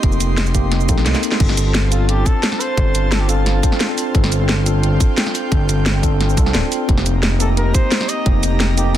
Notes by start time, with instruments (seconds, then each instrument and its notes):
Already playing: tine electric piano A#3 C4 D#4 G4 A4, analog synth pad G4 D#5 C6
0.03 analog synth bass F1, tine electric piano A#3 C4 D#4 G4, kick, closed hi-hat
0.12 shaker
0.20 analog synth bass F1, closed hi-hat, shaker
0.38 snare, closed hi-hat
0.46 shaker
0.54 tine electric piano A#3 C4 D#4 G4, kick, closed hi-hat, shaker
0.72 snare, closed hi-hat
0.80 shaker
0.88 analog synth bass A#1, tine electric piano A#3 C4 D#4 A4, kick, closed hi-hat, shaker
0.98 snare
1.06 analog synth bass C2, snare, closed hi-hat
1.14 tine electric piano A#3 C4 D#4 G4, snare, shaker
1.23 open hi-hat, shaker
1.32 snare
1.39 analog synth bass G1, tine electric piano C4 D4 F4 A4, analog synth pad F4 C5 A5, kick, closed hi-hat, crash
1.49 snare
1.57 analog synth bass G1, closed hi-hat, shaker
1.75 snare, closed hi-hat
1.91 tine electric piano C4 D4 F4 A4, flugelhorn F4, closed hi-hat, shaker
2.09 flugelhorn G4, closed hi-hat
2.26 flugelhorn A4, kick, closed hi-hat, shaker
2.43 snare, closed hi-hat
2.52 snare
2.60 flugelhorn C5, open hi-hat, shaker
2.77 analog synth bass G1, tine electric piano C4 D4 F4 A4, kick, closed hi-hat
2.95 analog synth bass G1, closed hi-hat, shaker
3.12 flugelhorn A4, snare, closed hi-hat
3.20 flugelhorn G4
3.28 tine electric piano C4 D4 F4 A4, flugelhorn F4, closed hi-hat, shaker
3.46 snare, closed hi-hat
3.63 tine electric piano C4 D4 F4 C5, kick, closed hi-hat, shaker
3.72 snare
3.80 snare, closed hi-hat
3.89 tine electric piano C4 D4 F4 A4
3.98 open hi-hat, shaker
4.13 analog synth bass G1, tine electric piano C4 D4 F4 A4, analog synth pad G5, kick, closed hi-hat
4.24 snare
4.32 analog synth bass G1, closed hi-hat, shaker
4.49 snare, closed hi-hat
4.65 tine electric piano C4 D4 F4 A4, closed hi-hat, shaker
4.83 closed hi-hat
5.00 kick, closed hi-hat, shaker
5.18 snare, closed hi-hat
5.26 snare
5.35 open hi-hat, shaker
5.51 analog synth bass G1, tine electric piano C4 D4 F4 A4, kick, closed hi-hat
5.69 analog synth bass G1, closed hi-hat, shaker
5.86 snare, closed hi-hat
6.02 tine electric piano C4 D4 F4 A4, kick, closed hi-hat, shaker
6.21 snare, closed hi-hat
6.29 shaker
6.37 analog synth bass C2, tine electric piano C4 D4 F4 A4, kick, closed hi-hat, shaker
6.46 tine electric piano C4 D4 F4 D5, snare
6.55 analog synth bass D1, snare, closed hi-hat
6.72 open hi-hat, shaker
6.88 analog synth bass F1, tine electric piano A#3 C4 G4, analog synth pad G4 D#5 A#5, kick, closed hi-hat
6.98 snare
7.06 analog synth bass F1, closed hi-hat, shaker
7.23 snare, closed hi-hat
7.39 tine electric piano A#3 C4 D#4 G4, flugelhorn A4, closed hi-hat, shaker
7.57 flugelhorn A#4, closed hi-hat
7.74 flugelhorn C5, kick, closed hi-hat, shaker
7.92 snare, closed hi-hat
8.01 snare
8.09 flugelhorn D#5, open hi-hat, shaker
8.26 analog synth bass F1, tine electric piano A#3 C4 D#4 G4, kick, closed hi-hat
8.43 analog synth bass F1, closed hi-hat, shaker
8.60 snare, closed hi-hat
8.77 tine electric piano A#3 C4 D#4 G4, flugelhorn G4, closed hi-hat, shaker
8.94 flugelhorn A#4